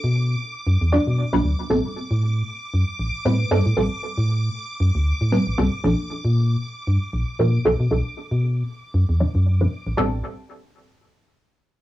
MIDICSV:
0, 0, Header, 1, 4, 480
1, 0, Start_track
1, 0, Tempo, 517241
1, 1579, Time_signature, 4, 2, 24, 8
1, 10965, End_track
2, 0, Start_track
2, 0, Title_t, "String machine"
2, 0, Program_c, 0, 50
2, 0, Note_on_c, 0, 86, 88
2, 1570, Note_off_c, 0, 86, 0
2, 1581, Note_on_c, 0, 86, 90
2, 9271, Note_off_c, 0, 86, 0
2, 10965, End_track
3, 0, Start_track
3, 0, Title_t, "Synth stab"
3, 0, Program_c, 1, 62
3, 0, Note_on_c, 1, 54, 80
3, 0, Note_on_c, 1, 59, 73
3, 0, Note_on_c, 1, 62, 70
3, 0, Note_on_c, 1, 69, 86
3, 837, Note_off_c, 1, 54, 0
3, 838, Note_off_c, 1, 59, 0
3, 839, Note_off_c, 1, 62, 0
3, 840, Note_off_c, 1, 69, 0
3, 858, Note_on_c, 1, 54, 83
3, 858, Note_on_c, 1, 59, 77
3, 859, Note_on_c, 1, 62, 76
3, 860, Note_on_c, 1, 74, 93
3, 1203, Note_off_c, 1, 54, 0
3, 1203, Note_off_c, 1, 59, 0
3, 1204, Note_off_c, 1, 62, 0
3, 1204, Note_off_c, 1, 74, 0
3, 1235, Note_on_c, 1, 54, 85
3, 1236, Note_on_c, 1, 59, 78
3, 1236, Note_on_c, 1, 62, 77
3, 1237, Note_on_c, 1, 71, 93
3, 1554, Note_off_c, 1, 54, 0
3, 1554, Note_off_c, 1, 59, 0
3, 1554, Note_off_c, 1, 62, 0
3, 1555, Note_off_c, 1, 71, 0
3, 1577, Note_on_c, 1, 55, 76
3, 1579, Note_on_c, 1, 59, 73
3, 1580, Note_on_c, 1, 60, 73
3, 1582, Note_on_c, 1, 69, 87
3, 2994, Note_off_c, 1, 55, 0
3, 2994, Note_off_c, 1, 59, 0
3, 2995, Note_off_c, 1, 60, 0
3, 2996, Note_off_c, 1, 69, 0
3, 3018, Note_on_c, 1, 55, 77
3, 3019, Note_on_c, 1, 59, 71
3, 3019, Note_on_c, 1, 60, 69
3, 3020, Note_on_c, 1, 71, 84
3, 3234, Note_off_c, 1, 55, 0
3, 3235, Note_off_c, 1, 59, 0
3, 3235, Note_off_c, 1, 60, 0
3, 3235, Note_off_c, 1, 71, 0
3, 3258, Note_on_c, 1, 55, 93
3, 3259, Note_on_c, 1, 59, 85
3, 3260, Note_on_c, 1, 60, 84
3, 3260, Note_on_c, 1, 69, 103
3, 3366, Note_off_c, 1, 55, 0
3, 3367, Note_off_c, 1, 59, 0
3, 3367, Note_off_c, 1, 60, 0
3, 3368, Note_off_c, 1, 69, 0
3, 3497, Note_on_c, 1, 55, 77
3, 3498, Note_on_c, 1, 59, 71
3, 3500, Note_on_c, 1, 60, 72
3, 3502, Note_on_c, 1, 69, 88
3, 4913, Note_off_c, 1, 55, 0
3, 4914, Note_off_c, 1, 59, 0
3, 4915, Note_off_c, 1, 60, 0
3, 4916, Note_off_c, 1, 69, 0
3, 4938, Note_on_c, 1, 55, 78
3, 4939, Note_on_c, 1, 59, 70
3, 4939, Note_on_c, 1, 60, 72
3, 4940, Note_on_c, 1, 71, 85
3, 5154, Note_off_c, 1, 55, 0
3, 5154, Note_off_c, 1, 59, 0
3, 5155, Note_off_c, 1, 60, 0
3, 5155, Note_off_c, 1, 71, 0
3, 5178, Note_on_c, 1, 55, 93
3, 5179, Note_on_c, 1, 59, 85
3, 5179, Note_on_c, 1, 60, 85
3, 5180, Note_on_c, 1, 69, 105
3, 5286, Note_off_c, 1, 55, 0
3, 5287, Note_off_c, 1, 59, 0
3, 5287, Note_off_c, 1, 60, 0
3, 5287, Note_off_c, 1, 69, 0
3, 5416, Note_on_c, 1, 53, 80
3, 5418, Note_on_c, 1, 58, 72
3, 5420, Note_on_c, 1, 62, 72
3, 5421, Note_on_c, 1, 69, 86
3, 6833, Note_off_c, 1, 53, 0
3, 6834, Note_off_c, 1, 58, 0
3, 6835, Note_off_c, 1, 62, 0
3, 6836, Note_off_c, 1, 69, 0
3, 6859, Note_on_c, 1, 53, 77
3, 6860, Note_on_c, 1, 58, 73
3, 6861, Note_on_c, 1, 62, 69
3, 6861, Note_on_c, 1, 70, 83
3, 7075, Note_off_c, 1, 53, 0
3, 7075, Note_off_c, 1, 58, 0
3, 7075, Note_off_c, 1, 62, 0
3, 7076, Note_off_c, 1, 70, 0
3, 7098, Note_on_c, 1, 54, 92
3, 7099, Note_on_c, 1, 59, 86
3, 7100, Note_on_c, 1, 62, 86
3, 7101, Note_on_c, 1, 69, 104
3, 7207, Note_off_c, 1, 54, 0
3, 7207, Note_off_c, 1, 59, 0
3, 7207, Note_off_c, 1, 62, 0
3, 7208, Note_off_c, 1, 69, 0
3, 7337, Note_on_c, 1, 54, 80
3, 7339, Note_on_c, 1, 59, 72
3, 7340, Note_on_c, 1, 62, 74
3, 7342, Note_on_c, 1, 69, 87
3, 8518, Note_off_c, 1, 54, 0
3, 8518, Note_off_c, 1, 59, 0
3, 8519, Note_off_c, 1, 62, 0
3, 8520, Note_off_c, 1, 69, 0
3, 8538, Note_on_c, 1, 54, 86
3, 8538, Note_on_c, 1, 59, 79
3, 8539, Note_on_c, 1, 62, 80
3, 8540, Note_on_c, 1, 74, 94
3, 8883, Note_off_c, 1, 54, 0
3, 8883, Note_off_c, 1, 59, 0
3, 8884, Note_off_c, 1, 62, 0
3, 8884, Note_off_c, 1, 74, 0
3, 8915, Note_on_c, 1, 54, 87
3, 8916, Note_on_c, 1, 59, 80
3, 8917, Note_on_c, 1, 62, 80
3, 8918, Note_on_c, 1, 71, 95
3, 9234, Note_off_c, 1, 54, 0
3, 9235, Note_off_c, 1, 59, 0
3, 9235, Note_off_c, 1, 62, 0
3, 9235, Note_off_c, 1, 71, 0
3, 9256, Note_on_c, 1, 55, 87
3, 9258, Note_on_c, 1, 59, 79
3, 9260, Note_on_c, 1, 60, 77
3, 9262, Note_on_c, 1, 69, 94
3, 9442, Note_off_c, 1, 55, 0
3, 9444, Note_off_c, 1, 59, 0
3, 9445, Note_off_c, 1, 60, 0
3, 9446, Note_off_c, 1, 69, 0
3, 10965, End_track
4, 0, Start_track
4, 0, Title_t, "FM bass"
4, 0, Program_c, 2, 39
4, 36, Note_on_c, 2, 47, 91
4, 332, Note_off_c, 2, 47, 0
4, 618, Note_on_c, 2, 42, 100
4, 717, Note_off_c, 2, 42, 0
4, 755, Note_on_c, 2, 40, 95
4, 918, Note_off_c, 2, 40, 0
4, 996, Note_on_c, 2, 47, 81
4, 1158, Note_off_c, 2, 47, 0
4, 1235, Note_on_c, 2, 35, 88
4, 1309, Note_off_c, 2, 35, 0
4, 1338, Note_on_c, 2, 38, 84
4, 1437, Note_off_c, 2, 38, 0
4, 1578, Note_on_c, 2, 33, 98
4, 1677, Note_off_c, 2, 33, 0
4, 1956, Note_on_c, 2, 45, 90
4, 2252, Note_off_c, 2, 45, 0
4, 2539, Note_on_c, 2, 42, 79
4, 2637, Note_off_c, 2, 42, 0
4, 2778, Note_on_c, 2, 33, 99
4, 2877, Note_off_c, 2, 33, 0
4, 3018, Note_on_c, 2, 45, 97
4, 3200, Note_off_c, 2, 45, 0
4, 3258, Note_on_c, 2, 43, 87
4, 3357, Note_off_c, 2, 43, 0
4, 3395, Note_on_c, 2, 45, 97
4, 3469, Note_off_c, 2, 45, 0
4, 3498, Note_on_c, 2, 33, 99
4, 3597, Note_off_c, 2, 33, 0
4, 3875, Note_on_c, 2, 45, 91
4, 4172, Note_off_c, 2, 45, 0
4, 4458, Note_on_c, 2, 42, 99
4, 4557, Note_off_c, 2, 42, 0
4, 4595, Note_on_c, 2, 38, 92
4, 4758, Note_off_c, 2, 38, 0
4, 4836, Note_on_c, 2, 45, 81
4, 4998, Note_off_c, 2, 45, 0
4, 5076, Note_on_c, 2, 33, 90
4, 5150, Note_off_c, 2, 33, 0
4, 5178, Note_on_c, 2, 36, 83
4, 5277, Note_off_c, 2, 36, 0
4, 5419, Note_on_c, 2, 34, 102
4, 5517, Note_off_c, 2, 34, 0
4, 5796, Note_on_c, 2, 46, 89
4, 6092, Note_off_c, 2, 46, 0
4, 6378, Note_on_c, 2, 43, 78
4, 6477, Note_off_c, 2, 43, 0
4, 6618, Note_on_c, 2, 34, 102
4, 6717, Note_off_c, 2, 34, 0
4, 6859, Note_on_c, 2, 46, 97
4, 7041, Note_off_c, 2, 46, 0
4, 7099, Note_on_c, 2, 35, 83
4, 7197, Note_off_c, 2, 35, 0
4, 7237, Note_on_c, 2, 47, 95
4, 7310, Note_off_c, 2, 47, 0
4, 7339, Note_on_c, 2, 35, 96
4, 7437, Note_off_c, 2, 35, 0
4, 7716, Note_on_c, 2, 47, 88
4, 8012, Note_off_c, 2, 47, 0
4, 8299, Note_on_c, 2, 42, 99
4, 8397, Note_off_c, 2, 42, 0
4, 8436, Note_on_c, 2, 40, 92
4, 8598, Note_off_c, 2, 40, 0
4, 8676, Note_on_c, 2, 42, 95
4, 8972, Note_off_c, 2, 42, 0
4, 9156, Note_on_c, 2, 33, 94
4, 9230, Note_off_c, 2, 33, 0
4, 9259, Note_on_c, 2, 33, 97
4, 9482, Note_off_c, 2, 33, 0
4, 10965, End_track
0, 0, End_of_file